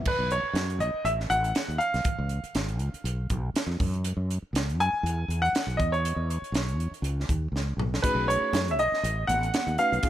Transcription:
0.05 grand piano B4, muted fretless electric bass stroke, kick, crash
0.19 fretless electric bass B1
0.31 grand piano C#5, closed hi-hat
0.43 muted fretless electric bass stroke
0.53 fretless electric bass F#2, snare, closed hi-hat
0.70 closed hi-hat
0.79 fretless electric bass B1, grand piano D#5, closed hi-hat
1.04 fretless electric bass A1, grand piano E5, closed hi-hat
1.20 snare
1.30 fretless electric bass A1, grand piano F#5, closed hi-hat
1.44 closed hi-hat
1.55 snare, closed hi-hat
1.68 fretless electric bass D#2, closed hi-hat
1.78 grand piano F5, closed hi-hat
1.94 fretless electric bass B1, snare, closed hi-hat
2.05 kick, closed hi-hat
2.18 fretless electric bass C#2
2.29 closed hi-hat
2.44 muted fretless electric bass stroke, closed hi-hat
2.55 fretless electric bass G#1, snare, closed hi-hat
2.68 closed hi-hat
2.79 fretless electric bass C#2, closed hi-hat
2.94 muted fretless electric bass stroke, closed hi-hat
3.04 fretless electric bass B1, closed hi-hat
3.30 fretless electric bass B1, kick, closed hi-hat
3.54 muted fretless electric bass stroke, snare, closed hi-hat
3.67 fretless electric bass F2, snare
3.80 fretless electric bass F#2, kick, open hi-hat
3.94 closed hi-hat
4.04 closed hi-hat
4.17 fretless electric bass F#2
4.31 closed hi-hat
4.42 muted fretless electric bass stroke
4.53 fretless electric bass C#2, snare, closed hi-hat
4.69 closed hi-hat
4.78 fretless electric bass F#2, grand piano G#5, closed hi-hat
4.93 muted fretless electric bass stroke
5.03 fretless electric bass E2, closed hi-hat
5.28 fretless electric bass E2, closed hi-hat
5.42 grand piano F#5, closed hi-hat
5.53 muted fretless electric bass stroke, snare, closed hi-hat
5.67 fretless electric bass B1, closed hi-hat
5.77 fretless electric bass E2, grand piano D#5, kick, closed hi-hat
5.92 grand piano C#5, closed hi-hat
6.05 closed hi-hat
6.16 fretless electric bass E2
6.30 closed hi-hat
6.42 muted fretless electric bass stroke, closed hi-hat
6.52 fretless electric bass B1, snare, closed hi-hat
6.68 closed hi-hat
6.77 fretless electric bass E2, closed hi-hat
6.91 muted fretless electric bass stroke, closed hi-hat
7.02 fretless electric bass C#2, closed hi-hat
7.20 snare
7.29 fretless electric bass D#2, kick, closed hi-hat
7.52 fretless electric bass C#2, snare
7.77 fretless electric bass B1, mid tom
7.94 snare
8.02 tine electric piano A3 C#4 D#4 F#4 G#4, flute B4, grand piano B4, kick, closed hi-hat, crash, muted conga
8.15 fretless electric bass B1
8.28 grand piano C#5, flute C#5, closed hi-hat, muted conga
8.41 muted fretless electric bass stroke
8.53 fretless electric bass F#2, snare, closed hi-hat, high conga
8.68 grand piano E5, flute E5, closed hi-hat
8.78 fretless electric bass B1, flute D#5, grand piano D#5, closed hi-hat
8.92 muted fretless electric bass stroke, snare
9.03 fretless electric bass A1, closed hi-hat, muted conga
9.27 fretless electric bass A1, grand piano F#5, flute F#5, closed hi-hat, high conga
9.43 closed hi-hat
9.54 snare, closed hi-hat, high conga
9.67 fretless electric bass D#2, closed hi-hat
9.78 tine electric piano A3 C#4 D#4 F#4 B4, grand piano F5, flute F5, closed hi-hat, muted conga
9.92 fretless electric bass B1, closed hi-hat
10.03 tine electric piano B3 C#4 D#4 F4 G#4, kick, closed hi-hat, muted conga

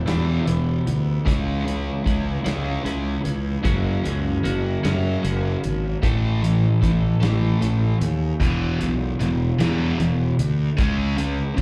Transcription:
0.06 distorted electric guitar E2 B2 E3, fingered electric bass E2, clean electric guitar E2 B2 E3 G3 B3 E4, snare, closed hi-hat
0.45 fingered electric bass E1, distorted electric guitar E2 B2, clean electric guitar E3 G3 B3 E4, closed hi-hat
0.87 fingered electric bass D2, closed hi-hat
1.25 fingered electric bass C#2, clean electric guitar C#3 E3 G#3 C#4 E4, distorted electric guitar C#3 G#3 C#4, kick, closed hi-hat
1.65 distorted electric guitar C#3 G#3, clean electric guitar G#3 C#4 E4, closed hi-hat
2.04 fingered electric bass C#2, distorted electric guitar C#3 G#3, clean electric guitar E3 G#3 C#4 E4, kick, closed hi-hat
2.44 fingered electric bass C#2, distorted electric guitar C#3 G#3 C#4, clean electric guitar C#3 E3 G#3 C#4 E4, snare, closed hi-hat
2.84 fingered electric bass C#2, distorted electric guitar C#3 G#3, clean electric guitar E3 G#3 C#4 E4, closed hi-hat
3.25 fingered electric bass C#2, closed hi-hat
3.63 fingered electric bass F#1, clean electric guitar F#2 C#3 F#3 A#3 C#4 F#4, distorted electric guitar F#2 C#3 F#3, kick, closed hi-hat
4.03 fingered electric bass C#2, distorted electric guitar F#2 C#3, clean electric guitar F#3 A#3 C#4 F#4, closed hi-hat
4.43 fingered electric bass F#1, distorted electric guitar F#2 C#3, clean electric guitar F#3 A#3 C#4 F#4, closed hi-hat
4.83 distorted electric guitar F#2 C#3 F#3, fingered electric bass F#2, clean electric guitar F#2 C#3 F#3 A#3 C#4 F#4, snare, closed hi-hat
5.23 fingered electric bass F#1, distorted electric guitar F#2 C#3, clean electric guitar F#3 A#3 C#4 F#4, closed hi-hat
5.64 fingered electric bass G#1, closed hi-hat
6.02 fingered electric bass A1, clean electric guitar A2 E3 A3 C#4 A4, distorted electric guitar A2 E3 A3, kick, closed hi-hat
6.42 distorted electric guitar A2 E3, clean electric guitar A3 C#4 A4, closed hi-hat
6.81 fingered electric bass A1, distorted electric guitar A2 E3, clean electric guitar E3 A3 C#4 A4, kick, closed hi-hat
7.20 fingered electric bass A1, distorted electric guitar A2 E3 A3, clean electric guitar A2 E3 A3 C#4 A4, snare, closed hi-hat
7.60 fingered electric bass A1, distorted electric guitar A2 E3, clean electric guitar A3 C#4 A4, closed hi-hat
8.01 fingered electric bass D#2, closed hi-hat
8.40 fingered electric bass E1, distorted electric guitar E2 B2 E3, kick, closed hi-hat
8.81 fingered electric bass B1, distorted electric guitar E2 B2, closed hi-hat
9.20 fingered electric bass E1, distorted electric guitar E2 B2, closed hi-hat
9.60 distorted electric guitar E2 B2 E3, fingered electric bass E2, snare, closed hi-hat
10.00 fingered electric bass E1, distorted electric guitar E2 B2, closed hi-hat
10.39 fingered electric bass D2, closed hi-hat
10.79 fingered electric bass C#2, distorted electric guitar C#3 G#3 C#4, kick, closed hi-hat
11.18 distorted electric guitar C#3 G#3, closed hi-hat
11.57 fingered electric bass C#2, distorted electric guitar C#3 G#3, kick, closed hi-hat

